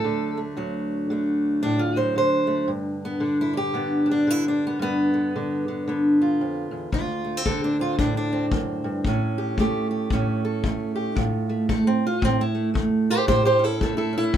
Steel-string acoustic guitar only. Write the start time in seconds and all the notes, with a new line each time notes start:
Already playing: D2 F#3 A3 A4
0.04 D3
0.37 A3
0.57 D2 F#3
1.10 D3 A3
1.63 A2 D4
1.79 F4
1.96 F#3 C5
2.16 D3 C5
2.47 A3
2.68 G2
3.05 B3
3.20 D3 D4
3.41 E4
3.53 D4 G4
3.74 D3 B3
4.06 D4
4.11 D4
4.27 D3 E4
4.48 D4
4.67 B3
4.79 G2 B3
5.14 D3
5.36 D3
5.68 D3
5.88 D3 B3
6.21 F4
6.41 F2
6.71 E2
6.92 D2 F4
7.25 A3
7.37 C4
7.46 D3 A4
7.64 D4
7.79 C4 F4
7.99 A2 D4
8.17 D4
8.33 C4
8.51 F#2
8.84 G2
9.07 A2 C#4
9.38 G4
9.59 A3 G4
9.91 G4
10.12 A2 C#4
10.45 A4
10.65 A3
10.96 G4
11.16 A2 F4
11.49 A3
11.69 A3 A4
11.87 C4
12.07 F4
12.22 A2 C4
12.41 E4
12.55 A3
12.74 A3
13.10 G4 C5
13.27 A2 G4 C5
13.45 G4 C5
13.59 C#4
13.64 E4 A4
13.81 A3 E4 A4
13.97 E4 A4
14.13 C#4
14.18 E4
14.33 A2